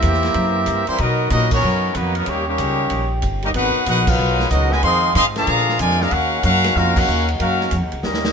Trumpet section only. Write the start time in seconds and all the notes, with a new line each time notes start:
Already playing: C4 G4 A#4 E5
0.89 A#3 E4 G4 C5
1.01 B3 F#4 A#4 D#5
1.32 B3 F#4 A#4 D#5
1.53 B3 F#4 A#4 C#5
1.95 F#3 A#3 D#4 B4
2.16 F#3 B3 D#4 A#4
2.28 A#3 D#4 G4 C#5
2.48 A#3 D#4 G4 C#5
3.44 C#4 G4 A#4 D#5
3.55 D#4 A#4 B4 F#5
3.88 D#4 A#4 B4 F#5
4.08 D#4 A#4 B4 F5
4.51 B3 F#4 A#4 D#5
4.72 F#4 B4 D#5 G#5
4.83 G#4 D#5 F5 C6
5.15 G#4 D#5 F5 C6
5.37 G#4 D5 F5 A#5
5.81 F4 A#4 D5 G#5
6.01 D4 G#4 A#4 F5
6.12 C#4 A#4 F5 F#5
6.43 C#4 A#4 F5 F#5
6.76 C#4 F#4 A#4 F5
6.97 C#4 A#4 F5 F#5
7.40 C#4 F#4 A#4 F5
8.03 C#4 G4 A#4 D#5